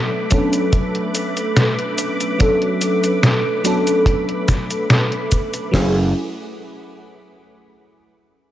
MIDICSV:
0, 0, Header, 1, 5, 480
1, 0, Start_track
1, 0, Key_signature, 3, "minor"
1, 0, Tempo, 833333
1, 1383, Time_signature, 4, 2, 24, 8
1, 4905, End_track
2, 0, Start_track
2, 0, Title_t, "String machine"
2, 0, Program_c, 0, 50
2, 0, Note_on_c, 0, 57, 81
2, 0, Note_on_c, 0, 71, 76
2, 0, Note_on_c, 0, 83, 76
2, 0, Note_on_c, 0, 86, 89
2, 3278, Note_off_c, 0, 83, 0
2, 3279, Note_off_c, 0, 71, 0
2, 3279, Note_off_c, 0, 86, 0
2, 3281, Note_off_c, 0, 57, 0
2, 4905, End_track
3, 0, Start_track
3, 0, Title_t, "FM electric piano"
3, 0, Program_c, 1, 5
3, 0, Control_c, 1, 64, 127
3, 0, Note_on_c, 1, 54, 86
3, 0, Note_on_c, 1, 59, 77
3, 0, Note_on_c, 1, 61, 77
3, 0, Note_on_c, 1, 62, 81
3, 0, Note_on_c, 1, 69, 94
3, 151, Note_off_c, 1, 54, 0
3, 153, Note_off_c, 1, 59, 0
3, 155, Note_off_c, 1, 61, 0
3, 157, Note_off_c, 1, 62, 0
3, 159, Note_off_c, 1, 69, 0
3, 174, Note_on_c, 1, 54, 88
3, 178, Note_on_c, 1, 59, 78
3, 182, Note_on_c, 1, 61, 81
3, 188, Note_on_c, 1, 62, 84
3, 192, Note_on_c, 1, 69, 93
3, 1351, Note_off_c, 1, 54, 0
3, 1353, Note_off_c, 1, 59, 0
3, 1356, Note_off_c, 1, 61, 0
3, 1358, Note_off_c, 1, 62, 0
3, 1360, Note_off_c, 1, 69, 0
3, 1373, Note_on_c, 1, 54, 87
3, 1377, Note_on_c, 1, 59, 77
3, 1382, Note_on_c, 1, 61, 79
3, 1386, Note_on_c, 1, 62, 80
3, 1392, Note_on_c, 1, 69, 95
3, 2071, Note_off_c, 1, 54, 0
3, 2073, Note_off_c, 1, 59, 0
3, 2075, Note_off_c, 1, 61, 0
3, 2078, Note_off_c, 1, 62, 0
3, 2080, Note_off_c, 1, 69, 0
3, 2096, Note_on_c, 1, 54, 88
3, 2101, Note_on_c, 1, 59, 79
3, 2106, Note_on_c, 1, 61, 79
3, 2108, Note_on_c, 1, 62, 78
3, 2113, Note_on_c, 1, 69, 98
3, 3272, Note_off_c, 1, 54, 0
3, 3275, Note_off_c, 1, 59, 0
3, 3277, Note_off_c, 1, 61, 0
3, 3278, Note_off_c, 1, 62, 0
3, 3281, Note_off_c, 1, 69, 0
3, 3290, Note_on_c, 1, 54, 87
3, 3297, Note_on_c, 1, 57, 77
3, 3304, Note_on_c, 1, 61, 78
3, 3310, Control_c, 1, 64, 0
3, 3310, Note_on_c, 1, 64, 80
3, 3317, Note_on_c, 1, 68, 97
3, 3477, Note_off_c, 1, 54, 0
3, 3481, Note_off_c, 1, 57, 0
3, 3485, Note_off_c, 1, 61, 0
3, 3488, Note_off_c, 1, 64, 0
3, 3492, Note_off_c, 1, 68, 0
3, 4905, End_track
4, 0, Start_track
4, 0, Title_t, "Slap bass"
4, 0, Program_c, 2, 36
4, 3304, Note_on_c, 2, 30, 92
4, 3527, Note_off_c, 2, 30, 0
4, 4905, End_track
5, 0, Start_track
5, 0, Title_t, "Drums"
5, 177, Note_on_c, 9, 42, 81
5, 177, Note_on_c, 9, 69, 62
5, 185, Note_on_c, 9, 36, 120
5, 234, Note_off_c, 9, 42, 0
5, 234, Note_off_c, 9, 69, 0
5, 243, Note_off_c, 9, 36, 0
5, 305, Note_on_c, 9, 42, 54
5, 305, Note_on_c, 9, 69, 36
5, 363, Note_off_c, 9, 42, 0
5, 363, Note_off_c, 9, 69, 0
5, 419, Note_on_c, 9, 42, 80
5, 419, Note_on_c, 9, 69, 27
5, 420, Note_on_c, 9, 36, 127
5, 476, Note_off_c, 9, 42, 0
5, 476, Note_off_c, 9, 69, 0
5, 477, Note_off_c, 9, 36, 0
5, 547, Note_on_c, 9, 42, 38
5, 604, Note_off_c, 9, 42, 0
5, 661, Note_on_c, 9, 42, 82
5, 661, Note_on_c, 9, 69, 61
5, 718, Note_off_c, 9, 42, 0
5, 718, Note_off_c, 9, 69, 0
5, 788, Note_on_c, 9, 42, 55
5, 788, Note_on_c, 9, 69, 35
5, 846, Note_off_c, 9, 42, 0
5, 846, Note_off_c, 9, 69, 0
5, 902, Note_on_c, 9, 38, 127
5, 902, Note_on_c, 9, 42, 83
5, 902, Note_on_c, 9, 69, 28
5, 959, Note_off_c, 9, 38, 0
5, 959, Note_off_c, 9, 42, 0
5, 959, Note_off_c, 9, 69, 0
5, 1029, Note_on_c, 9, 42, 37
5, 1087, Note_off_c, 9, 42, 0
5, 1141, Note_on_c, 9, 42, 83
5, 1141, Note_on_c, 9, 69, 64
5, 1199, Note_off_c, 9, 42, 0
5, 1199, Note_off_c, 9, 69, 0
5, 1270, Note_on_c, 9, 42, 55
5, 1270, Note_on_c, 9, 69, 35
5, 1328, Note_off_c, 9, 42, 0
5, 1328, Note_off_c, 9, 69, 0
5, 1382, Note_on_c, 9, 42, 77
5, 1382, Note_on_c, 9, 69, 27
5, 1386, Note_on_c, 9, 36, 119
5, 1440, Note_off_c, 9, 42, 0
5, 1440, Note_off_c, 9, 69, 0
5, 1443, Note_off_c, 9, 36, 0
5, 1508, Note_on_c, 9, 42, 37
5, 1565, Note_off_c, 9, 42, 0
5, 1621, Note_on_c, 9, 42, 79
5, 1621, Note_on_c, 9, 69, 62
5, 1679, Note_off_c, 9, 42, 0
5, 1679, Note_off_c, 9, 69, 0
5, 1749, Note_on_c, 9, 42, 52
5, 1749, Note_on_c, 9, 69, 33
5, 1806, Note_off_c, 9, 42, 0
5, 1806, Note_off_c, 9, 69, 0
5, 1862, Note_on_c, 9, 38, 126
5, 1862, Note_on_c, 9, 42, 82
5, 1862, Note_on_c, 9, 69, 27
5, 1919, Note_off_c, 9, 38, 0
5, 1919, Note_off_c, 9, 42, 0
5, 1919, Note_off_c, 9, 69, 0
5, 2101, Note_on_c, 9, 42, 77
5, 2101, Note_on_c, 9, 69, 61
5, 2159, Note_off_c, 9, 42, 0
5, 2159, Note_off_c, 9, 69, 0
5, 2229, Note_on_c, 9, 42, 51
5, 2229, Note_on_c, 9, 69, 34
5, 2287, Note_off_c, 9, 42, 0
5, 2287, Note_off_c, 9, 69, 0
5, 2338, Note_on_c, 9, 36, 120
5, 2342, Note_on_c, 9, 42, 78
5, 2342, Note_on_c, 9, 69, 26
5, 2396, Note_off_c, 9, 36, 0
5, 2400, Note_off_c, 9, 42, 0
5, 2400, Note_off_c, 9, 69, 0
5, 2469, Note_on_c, 9, 42, 37
5, 2527, Note_off_c, 9, 42, 0
5, 2582, Note_on_c, 9, 38, 63
5, 2582, Note_on_c, 9, 42, 75
5, 2582, Note_on_c, 9, 69, 63
5, 2585, Note_on_c, 9, 36, 107
5, 2639, Note_off_c, 9, 38, 0
5, 2639, Note_off_c, 9, 42, 0
5, 2639, Note_off_c, 9, 69, 0
5, 2642, Note_off_c, 9, 36, 0
5, 2710, Note_on_c, 9, 42, 52
5, 2710, Note_on_c, 9, 69, 37
5, 2768, Note_off_c, 9, 42, 0
5, 2768, Note_off_c, 9, 69, 0
5, 2823, Note_on_c, 9, 38, 127
5, 2823, Note_on_c, 9, 42, 81
5, 2823, Note_on_c, 9, 69, 27
5, 2880, Note_off_c, 9, 38, 0
5, 2880, Note_off_c, 9, 42, 0
5, 2880, Note_off_c, 9, 69, 0
5, 2949, Note_on_c, 9, 42, 34
5, 3007, Note_off_c, 9, 42, 0
5, 3062, Note_on_c, 9, 42, 81
5, 3062, Note_on_c, 9, 69, 64
5, 3066, Note_on_c, 9, 36, 68
5, 3119, Note_off_c, 9, 42, 0
5, 3119, Note_off_c, 9, 69, 0
5, 3124, Note_off_c, 9, 36, 0
5, 3189, Note_on_c, 9, 42, 50
5, 3189, Note_on_c, 9, 69, 35
5, 3246, Note_off_c, 9, 42, 0
5, 3246, Note_off_c, 9, 69, 0
5, 3304, Note_on_c, 9, 36, 101
5, 3305, Note_on_c, 9, 38, 102
5, 3305, Note_on_c, 9, 46, 90
5, 3362, Note_off_c, 9, 36, 0
5, 3362, Note_off_c, 9, 38, 0
5, 3362, Note_off_c, 9, 46, 0
5, 4905, End_track
0, 0, End_of_file